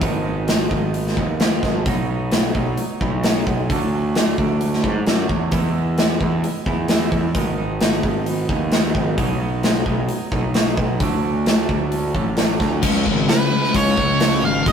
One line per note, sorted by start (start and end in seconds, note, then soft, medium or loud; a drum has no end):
0.01 0.67 G#1 loud
0.01 0.47 G#2 medium
0.01 0.46 D#3 medium
0.01 0.26 G#3 medium
0.01 0.26 B3 medium
0.01 0.24 D#4 medium
0.01 kick loud
0.01 open hi-hat soft
0.25 0.47 G#3 medium
0.25 0.48 B3 medium
0.25 0.49 D#4 medium
0.47 0.93 D#3 medium
0.47 0.71 G#3 medium
0.47 0.72 B3 medium
0.47 0.70 D#4 medium
0.47 snare medium
0.47 open hi-hat soft
0.71 1.19 G#1 medium
0.71 1.18 G#3 medium
0.71 1.17 B3 medium
0.71 1.16 D#4 medium
0.71 kick medium
0.94 open hi-hat soft
1.07 snare soft
1.17 1.59 D#2 medium
1.17 1.40 G#3 medium
1.17 1.40 B3 medium
1.17 1.41 D#4 medium
1.17 kick medium
1.40 1.85 G#2 medium
1.40 1.85 D#3 medium
1.40 1.85 G#3 medium
1.40 1.85 B3 medium
1.40 1.86 D#4 medium
1.40 snare loud
1.40 open hi-hat soft
1.63 1.84 G#1 medium
1.63 kick medium
1.63 snare soft
1.86 2.51 B1 medium
1.86 2.31 B2 medium
1.86 2.11 F#3 medium
1.86 2.09 B3 medium
1.86 2.08 D#4 loud
1.86 kick medium
1.86 open hi-hat soft
2.09 2.32 F#3 soft
2.09 2.32 B3 medium
2.09 2.33 D#4 medium
2.32 2.78 B2 medium
2.32 2.58 F#3 medium
2.32 2.56 B3 medium
2.32 2.54 D#4 medium
2.32 snare loud
2.32 open hi-hat soft
2.55 2.76 B1 medium
2.55 3.02 F#3 medium
2.55 3.01 B3 medium
2.55 3.00 D#4 medium
2.55 kick medium
2.77 open hi-hat soft
3.01 3.43 B1 medium
3.01 3.23 F#3 soft
3.01 3.24 B3 medium
3.01 3.25 D#4 medium
3.01 kick medium
3.23 3.68 B2 medium
3.23 3.68 F#3 medium
3.23 3.69 B3 medium
3.23 3.69 D#4 medium
3.23 snare loud
3.23 open hi-hat soft
3.47 3.68 B1 medium
3.47 kick medium
3.70 4.34 D2 loud
3.70 4.15 D3 medium
3.70 3.94 F#3 medium
3.70 3.93 A3 medium
3.70 3.91 D4 medium
3.70 kick medium
3.70 open hi-hat soft
3.93 4.16 F#3 medium
3.93 4.16 A3 medium
3.93 4.17 D4 medium
4.15 4.62 D3 medium
4.15 4.40 F#3 medium
4.15 4.39 A3 medium
4.15 4.38 D4 medium
4.15 snare loud
4.15 open hi-hat soft
4.38 4.83 D2 medium
4.38 4.86 F#3 soft
4.38 4.84 A3 medium
4.38 4.83 D4 medium
4.38 kick medium
4.61 open hi-hat soft
4.73 snare soft
4.84 5.04 G#2 medium
4.84 5.07 F#3 medium
4.84 5.07 A3 medium
4.84 5.08 D4 medium
4.84 kick medium
5.07 5.28 F#2 medium
5.07 5.51 D3 medium
5.07 5.52 F#3 medium
5.07 5.52 A3 medium
5.07 5.52 D4 medium
5.07 snare loud
5.07 open hi-hat soft
5.29 5.50 E2 medium
5.29 kick medium
5.52 6.17 E2 medium
5.52 5.98 E3 medium
5.52 5.77 G#3 medium
5.52 5.76 B3 medium
5.52 5.74 E4 medium
5.52 kick medium
5.52 open hi-hat soft
5.75 5.99 G#3 soft
5.75 6.00 B3 medium
5.75 6.00 E4 medium
5.98 6.44 E3 medium
5.98 6.23 G#3 medium
5.98 6.23 B3 medium
5.98 6.20 E4 medium
5.98 snare loud
5.98 open hi-hat soft
6.21 6.42 E2 medium
6.21 6.68 G#3 medium
6.21 6.68 B3 medium
6.21 6.66 E4 medium
6.21 kick medium
6.44 open hi-hat soft
6.66 7.09 E2 medium
6.66 6.89 G#3 soft
6.66 6.91 B3 medium
6.66 6.90 E4 medium
6.66 kick medium
6.88 7.34 E3 medium
6.88 7.34 G#3 medium
6.88 7.36 B3 medium
6.88 7.35 E4 medium
6.88 snare loud
6.88 open hi-hat soft
7.12 7.33 E2 medium
7.12 kick medium
7.35 8.00 G#1 medium
7.35 7.81 G#2 medium
7.35 7.80 D#3 medium
7.35 7.59 G#3 medium
7.35 7.59 B3 medium
7.35 7.58 D#4 medium
7.35 kick medium
7.35 open hi-hat soft
7.58 7.80 G#3 soft
7.58 7.82 B3 medium
7.58 7.83 D#4 medium
7.81 8.27 D#3 medium
7.81 8.05 G#3 medium
7.81 8.05 B3 medium
7.81 8.03 D#4 medium
7.81 snare loud
7.81 open hi-hat soft
8.03 8.51 G#1 medium
8.03 8.51 G#3 medium
8.03 8.50 B3 medium
8.03 8.49 D#4 medium
8.03 kick medium
8.26 open hi-hat soft
8.49 8.92 D#2 medium
8.49 8.73 G#3 medium
8.49 8.73 B3 medium
8.49 8.74 D#4 medium
8.49 kick medium
8.72 9.17 G#2 medium
8.72 9.17 D#3 medium
8.72 9.17 G#3 medium
8.72 9.18 B3 medium
8.72 9.18 D#4 medium
8.72 snare loud
8.72 open hi-hat soft
8.95 9.16 G#1 medium
8.95 kick medium
9.18 9.83 B1 medium
9.18 9.62 B2 medium
9.18 9.43 F#3 medium
9.18 9.41 B3 medium
9.18 9.40 D#4 loud
9.18 kick medium
9.18 open hi-hat soft
9.41 9.63 F#3 medium
9.41 9.63 B3 medium
9.41 9.64 D#4 medium
9.63 10.09 B2 medium
9.63 9.88 F#3 medium
9.63 9.86 B3 medium
9.63 9.85 D#4 medium
9.63 snare loud
9.63 open hi-hat soft
9.86 10.07 B1 medium
9.86 10.33 F#3 medium
9.86 10.31 B3 medium
9.86 10.30 D#4 medium
9.86 kick medium
10.09 open hi-hat soft
10.32 10.74 B1 medium
10.32 10.54 F#3 medium
10.32 10.54 B3 medium
10.32 10.55 D#4 medium
10.32 kick medium
10.54 10.99 B2 medium
10.54 10.99 F#3 medium
10.54 11.00 B3 medium
10.54 11.00 D#4 medium
10.54 snare loud
10.54 open hi-hat soft
10.77 10.99 B1 medium
10.77 kick medium
11.00 11.65 D2 loud
11.00 11.45 D3 medium
11.00 11.24 F#3 medium
11.00 11.23 A3 medium
11.00 11.22 D4 medium
11.00 kick loud
11.00 open hi-hat soft
11.23 11.46 F#3 medium
11.23 11.46 A3 medium
11.23 11.47 D4 medium
11.46 11.92 D3 medium
11.46 11.70 F#3 medium
11.46 11.69 A3 medium
11.46 11.68 D4 medium
11.46 snare loud
11.46 open hi-hat soft
11.69 12.15 D2 medium
11.69 12.16 F#3 soft
11.69 12.15 A3 medium
11.69 12.13 D4 medium
11.69 kick medium
11.92 open hi-hat soft
12.15 12.57 A1 medium
12.15 12.37 F#3 medium
12.15 12.38 A3 medium
12.15 12.38 D4 medium
12.15 kick medium
12.37 12.82 D3 medium
12.37 12.82 F#3 medium
12.37 12.83 A3 medium
12.37 12.83 D4 medium
12.37 snare loud
12.37 open hi-hat soft
12.60 12.81 D2 medium
12.60 kick medium
12.60 snare soft
12.83 13.08 C#2 medium
12.83 13.05 C#3 medium
12.83 13.05 F3 medium
12.83 13.05 G#3 medium
12.83 13.50 C#4 medium
12.83 kick loud
12.83 crash medium
13.06 13.27 G#1 medium
13.06 13.27 C#3 medium
13.06 13.27 F3 medium
13.06 kick medium
13.29 13.50 C#3 medium
13.29 13.50 F3 medium
13.29 13.76 B4 medium
13.29 snare loud
13.29 open hi-hat soft
13.51 13.73 C#3 medium
13.51 13.73 F3 medium
13.51 14.65 G#3 medium
13.51 14.65 C#4 medium
13.64 snare soft
13.74 13.96 C#2 medium
13.74 13.96 C#3 medium
13.74 13.96 F3 medium
13.74 13.97 G#3 loud
13.74 14.45 C#5 medium
13.74 kick medium
13.74 open hi-hat medium
13.97 14.40 C#2 medium
13.97 14.18 C#3 medium
13.97 14.18 F3 medium
13.97 kick medium
14.20 14.41 C#3 medium
14.20 14.42 F3 medium
14.20 14.42 G#3 medium
14.20 snare loud
14.20 open hi-hat medium
14.42 14.64 G#1 medium
14.42 14.64 C#3 medium
14.42 14.64 F3 medium
14.42 14.68 F5 medium
14.65 14.72 G#1 medium
14.65 14.72 G#2 medium
14.65 14.72 D#3 medium
14.65 14.72 G#3 loud
14.65 14.72 D#5 medium
14.65 kick loud
14.65 open hi-hat medium